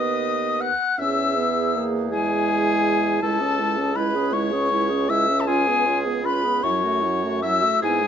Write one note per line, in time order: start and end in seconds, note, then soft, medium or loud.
0.00 0.72 D#2 soft
0.00 0.69 B3 medium
0.00 0.71 B4 medium
0.00 0.62 D#5 medium
0.00 0.63 D#6 medium
0.61 1.01 F#5 medium
0.61 0.99 F#6 medium
0.98 3.18 E2 medium
0.98 1.38 C#4 medium
0.98 2.14 G#4 medium
0.98 1.86 E5 medium
0.98 1.84 E6 medium
1.36 1.77 B3 medium
1.76 2.11 A#3 medium
2.11 3.20 G#3 medium
2.11 3.21 E4 medium
2.11 3.18 G#4 medium
2.11 3.23 G#5 medium
3.21 6.60 C#2 medium
3.21 3.43 G#3 medium
3.21 3.42 E4 medium
3.21 3.98 A4 medium
3.21 3.97 A5 medium
3.40 3.62 C#4 medium
3.40 3.61 G#4 medium
3.59 3.80 G#3 soft
3.59 3.79 E4 soft
3.78 3.96 C#4 soft
3.78 3.96 G#4 soft
3.96 4.17 G#3 medium
3.96 4.17 E4 medium
3.96 4.35 B4 medium
3.96 4.34 B5 medium
4.15 4.35 C#4 medium
4.15 4.35 G#4 medium
4.33 4.55 G#3 medium
4.33 4.53 E4 medium
4.33 5.11 C#5 medium
4.33 5.11 C#6 medium
4.52 4.71 C#4 medium
4.52 4.70 G#4 medium
4.71 4.92 G#3 medium
4.71 4.91 E4 medium
4.89 5.11 C#4 medium
4.89 5.10 G#4 medium
5.08 5.30 G#3 medium
5.08 5.28 E4 medium
5.08 5.47 E5 medium
5.08 5.42 E6 loud
5.27 5.48 C#4 medium
5.27 5.46 G#4 medium
5.40 5.49 A5 medium
5.47 5.70 C#4 medium
5.47 5.69 F4 medium
5.47 6.27 G#4 medium
5.47 5.99 G#5 loud
5.67 5.89 B3 medium
5.67 5.87 G#4 medium
5.85 6.08 C#4 medium
5.85 6.06 F4 soft
6.05 6.25 B3 medium
6.05 6.23 G#4 medium
6.24 6.47 C#4 medium
6.24 6.45 F4 medium
6.24 6.65 B4 medium
6.24 6.65 B5 medium
6.44 6.64 B3 soft
6.44 6.63 G#4 medium
6.64 7.65 F#2 medium
6.64 6.86 F#3 medium
6.64 6.84 E4 medium
6.64 7.42 C#5 medium
6.64 7.44 C#6 medium
6.83 7.06 A3 medium
6.83 7.03 F#4 medium
7.02 7.25 F#3 medium
7.02 7.24 E4 medium
7.23 7.43 A3 medium
7.23 7.42 F#4 soft
7.43 7.65 F#3 medium
7.43 7.63 E4 soft
7.43 7.82 E5 medium
7.43 7.83 E6 medium
7.62 7.82 A3 medium
7.62 7.82 F#4 medium
7.82 8.07 G#2 medium
7.82 8.05 B3 medium
7.82 8.05 E4 medium
7.82 8.07 G#4 medium
7.82 8.07 G#5 medium
8.03 8.07 G#3 medium
8.03 8.07 G#4 medium